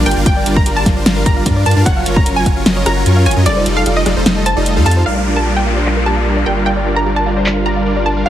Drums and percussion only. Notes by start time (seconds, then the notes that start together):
0.06 closed hi-hat
0.11 closed hi-hat
0.26 kick, closed hi-hat
0.46 closed hi-hat
0.56 kick
0.66 closed hi-hat
0.86 kick, snare, closed hi-hat
1.06 snare, closed hi-hat
1.26 kick, closed hi-hat
1.46 kick, closed hi-hat
1.66 closed hi-hat
1.71 closed hi-hat
1.86 kick, closed hi-hat
2.06 closed hi-hat
2.16 kick
2.26 closed hi-hat
2.46 kick, closed hi-hat
2.66 snare, closed hi-hat
2.86 cross-stick, closed hi-hat
3.06 closed hi-hat
3.26 closed hi-hat
3.31 closed hi-hat
3.46 closed hi-hat
3.66 closed hi-hat
3.86 closed hi-hat
4.06 cross-stick, snare, closed hi-hat
4.26 snare, closed hi-hat
4.46 closed hi-hat
4.66 closed hi-hat
4.86 closed hi-hat
4.91 closed hi-hat
5.86 clap
7.46 clap